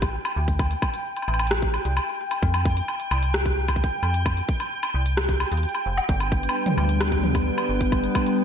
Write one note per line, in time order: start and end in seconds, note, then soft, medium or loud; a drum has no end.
0.00 0.18 A1 loud
0.00 8.44 G5 medium
0.00 kick loud
0.00 closed hi-hat medium
0.00 high woodblock soft
0.25 high woodblock medium
0.36 0.75 D2 medium
0.48 kick medium
0.48 closed hi-hat medium
0.59 kick loud
0.59 high woodblock soft
0.71 closed hi-hat medium
0.82 kick loud
0.82 high woodblock medium
0.94 closed hi-hat medium
1.17 closed hi-hat medium
1.17 high woodblock soft
1.22 high woodblock soft
1.28 1.78 A1 loud
1.28 high woodblock soft
1.34 high woodblock soft
1.39 closed hi-hat medium
1.39 high woodblock medium
1.47 cross-stick loud
1.47 closed hi-hat soft
1.55 closed hi-hat soft
1.62 kick medium
1.62 closed hi-hat soft
1.74 high woodblock soft
1.85 2.00 C2 medium
1.85 closed hi-hat medium
1.97 high woodblock medium
2.31 closed hi-hat medium
2.31 high woodblock medium
2.43 2.81 F2 medium
2.43 kick loud
2.54 closed hi-hat medium
2.54 high woodblock medium
2.65 kick loud
2.77 closed hi-hat medium
2.88 high woodblock soft
3.00 closed hi-hat medium
3.11 3.85 C2 loud
3.11 high woodblock medium
3.23 closed hi-hat medium
3.34 cross-stick loud
3.46 kick medium
3.46 closed hi-hat soft
3.68 kick soft
3.68 closed hi-hat medium
3.68 high woodblock medium
3.76 kick medium
3.84 kick medium
4.03 4.42 F2 medium
4.03 high woodblock soft
4.14 closed hi-hat medium
4.26 kick loud
4.26 high woodblock medium
4.37 closed hi-hat medium
4.49 kick loud
4.60 closed hi-hat medium
4.60 high woodblock soft
4.83 closed hi-hat soft
4.83 high woodblock medium
4.94 5.45 C2 loud
5.06 closed hi-hat medium
5.17 cross-stick loud
5.17 high woodblock soft
5.29 kick medium
5.29 closed hi-hat soft
5.40 high woodblock medium
5.52 5.66 D#2 medium
5.52 closed hi-hat medium
5.57 closed hi-hat soft
5.63 closed hi-hat soft
5.69 closed hi-hat soft
5.75 high woodblock soft
5.86 6.00 F1 medium
5.98 high woodblock medium
6.09 6.48 G1 medium
6.09 8.44 G3 medium
6.09 8.44 B3 medium
6.09 8.44 D4 medium
6.09 8.44 B4 medium
6.09 kick loud
6.20 closed hi-hat soft
6.20 high woodblock soft
6.32 kick loud
6.43 closed hi-hat medium
6.49 high woodblock medium
6.66 closed hi-hat soft
6.66 mid tom medium
6.78 7.51 D2 loud
6.78 high woodblock soft
6.89 closed hi-hat medium
7.01 cross-stick loud
7.01 high woodblock medium
7.12 kick medium
7.12 closed hi-hat soft
7.23 mid tom medium
7.35 kick loud
7.35 closed hi-hat medium
7.35 high woodblock soft
7.58 high woodblock medium
7.69 8.08 G1 medium
7.81 kick medium
7.81 closed hi-hat medium
7.92 kick loud
7.92 high woodblock soft
8.04 closed hi-hat soft
8.15 kick loud
8.15 high woodblock medium
8.27 closed hi-hat medium